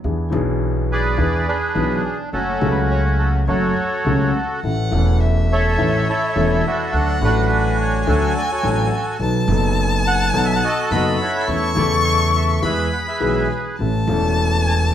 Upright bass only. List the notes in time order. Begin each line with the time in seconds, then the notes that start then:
0.04 E2
0.32 B1
1.18 E2
1.76 B1
2.33 F#1
2.61 C#2
3.47 F#1
4.05 C#2
4.63 A1
4.92 E1
5.79 A1
6.36 E1
6.93 D2
7.21 A1
8.07 D2
8.63 A1
9.19 B1
9.48 F#1
10.34 B1
10.91 F#1
11.48 E2
11.77 E2
12.63 E2
13.21 B1
13.79 A1
14.07 E1